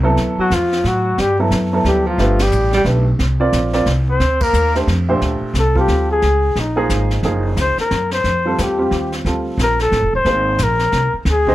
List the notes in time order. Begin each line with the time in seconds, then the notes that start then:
Already playing: C2
0.03 F#3 B3 E4 A4
0.17 D2, brush sweep, snare
0.38 F#3 F#4, muted upright bass stroke
0.50 E2 F3 F4, snare, hi-hat pedal
0.72 snare
0.84 A2 F#3 F#4, snare
1.18 G2 G3 G4, brush sweep, snare
1.39 F#3 B3 E4 A4
1.51 F#2, snare, hi-hat pedal
1.73 F#3 B3 E4 A4
1.84 D2 G3 G4, snare
2.06 F3 F4
2.18 G1 A3 D4 G4 B4, brush sweep, snare
2.39 G3 G4, snare, ride
2.52 A1, hi-hat pedal
2.73 G3 G4, snare
2.85 B1 A3 D4 G4 B4, snare
3.19 C2, brush sweep, snare
3.40 C4 F4 A#4 D5
3.52 A#1, snare, hi-hat pedal
3.73 C4 F4 A#4 D5, snare
3.86 C2, snare
4.09 C4 C5
4.20 D2, brush sweep, snare
4.40 A#3 A#4, kick, ride
4.53 D#2, hi-hat pedal
4.75 A3 D4 G4 C5, snare
4.87 F2, snare
5.09 A#2 A3 D4 G4 C5
5.21 D2, brush sweep, snare
5.41 muted upright bass stroke
5.54 C2, snare, hi-hat pedal
5.59 A4
5.75 G3 C4 F4 G4 A4, kick
5.88 D2, snare
6.12 G#4
6.22 C#2, brush sweep, snare
6.56 A#1, snare
6.60 D#4
6.76 F3 A#3 D#4 G#4
6.89 G#1, snare, hi-hat pedal
7.11 snare
7.23 F#1 F3 A#3 D#4 G#4, brush sweep, snare
7.57 C#2, snare, hi-hat pedal
7.61 C5
7.78 A#4, muted upright bass stroke, snare
7.91 F#2, snare
8.11 C5, snare
8.24 F2, brush sweep, snare
8.46 G3 C4 F4 A4
8.58 E2 G4, snare, hi-hat pedal
8.79 G3 C4 F4 G4
8.91 D#2, snare
9.12 snare
9.25 D2 G3 C4 F4 A4, brush sweep, snare
9.58 A#1, snare, hi-hat pedal
9.62 A#4
9.79 A4, snare
9.92 A1, snare
10.02 F1
10.13 D1 C5
10.25 G#1 A#3 D#4 G#4 C5, brush sweep, snare
10.58 A#1, snare, hi-hat pedal
10.63 A#4
10.79 snare
10.92 C2, snare
11.13 muted upright bass stroke
11.25 D2, brush sweep, snare
11.30 G#4
11.47 D3 G4 C5 D#5, kick